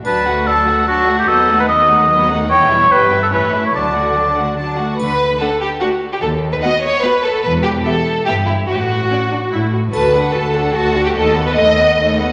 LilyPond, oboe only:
\new Staff \with { instrumentName = "Oboe" } { \time 3/4 \key d \major \tempo 4 = 146 b'4 a'4 fis'8. g'16 | a'8. b'16 dis''4. r8 | cis''4 b'8. a'16 b'8. cis''16 | d''2 r4 |
r2. | r2. | r2. | r2. |
r2. | r2. | }